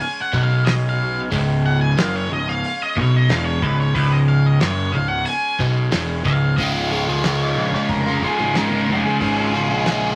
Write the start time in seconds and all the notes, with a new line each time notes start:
Already playing: G#3 C#4 G#4
0.00 G#5, open hi-hat
0.22 F#5
0.33 B1 B2, kick
0.39 F#5
0.43 F5
0.65 D#5, snare, open hi-hat
0.89 F5
1.31 C#1 C#2, kick, open hi-hat
1.66 F#5
1.81 G#5
1.97 F#1 F#2 F5, snare, open hi-hat
2.16 C#5
2.30 C#1 C#2 D#5
2.49 F5, snare
2.64 open hi-hat
2.83 D#5
2.96 B1 B2 C#5, kick
3.16 D#5
3.29 E1 E2 F5, snare, open hi-hat
3.45 C#5
3.62 C#1 C#2 B4, kick
3.80 C#5
3.95 C#1 C#2 B4, kick, open hi-hat
4.13 D#5
4.28 F5
4.46 D#5
4.60 F#1 F#2 C#5, snare, open hi-hat
4.92 C#1 C#2 F5
5.08 F#5
5.25 G#5, open hi-hat
5.59 B1 B2, kick
5.91 E1 E2, snare, open hi-hat
6.25 C#1 C#2 F5, kick, snare
6.56 C#1 C#2 G#2 C#3 G#3 C#4 F4 G#4 D#5, kick, open hi-hat
6.60 F4
6.91 G#2 C#3 G#3 F4 C#5
7.07 C#2 C#3 G#3 F4
7.23 C#2 G#2 C#3 G#3 F4, snare, open hi-hat
7.56 A#1
7.73 C#3 G#3 F4, kick, snare
7.88 F1 A#4, kick, open hi-hat
8.06 C#3 G#3 F4
8.22 G#2 C#3 G#3 F4 G#4, kick
8.38 G#1 C#3 G#3 F4
8.54 C#2 G#2 C#3 G#3 F4 A#4, snare, open hi-hat
8.71 C#3 G#3 F4
8.88 F1 G#2 C#3 G#3 F4 G#4
9.05 C#3 G#3 F4
9.20 G#1 C#2 G#2 C#3 G#3 F4, kick, open hi-hat
9.53 G#2 C#3 G#3 F4, snare
9.70 A#1 C#3 G#3 F4
9.85 C#2 G#2 C#3 G#3 F4, snare, open hi-hat